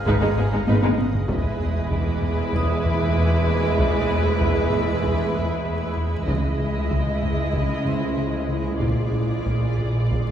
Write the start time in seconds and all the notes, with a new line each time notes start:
Already playing: G#1 G#4 B4 D#5 F5 F6
0.05 G#1 G#2 G#3 D#4 B4, taiko
0.22 G#2 G#3 D#4
0.37 G#1 G#2 G#3 B3 G#4
0.53 G#2 G#3 D#4
0.67 G#1 G#2 G#3 D#4 B4, taiko high
0.83 G#2 G#3 D#4, taiko high
0.98 G#2, taiko high
1.14 taiko low
1.29 E1 E2 G#3 E4 G#4 B4 E5 G#5, taiko
1.61 E2
1.90 E2 D6, taiko
2.22 E2, taiko low
2.53 E2 D#6, taiko
2.85 E2, taiko low
3.16 E2
3.47 E2
3.78 E2, taiko
4.09 E2
4.40 E2, taiko
4.71 E2, taiko low
5.03 E2, taiko
5.34 E2, taiko low
5.65 E2
5.97 E2
6.27 C#2 C#3 G#3 C#4 E4 G#4 D#5, taiko
6.60 C#3
6.91 C#3, taiko
7.22 C#3, taiko low
7.53 C#3, taiko
7.85 C#3 C5 C6, taiko low
8.17 C#3
8.49 C#3
8.80 A#1 A#2 F4 D5 F5, taiko
9.13 A#2
9.46 A#2, taiko
9.78 A#2, taiko low
10.10 A#2, taiko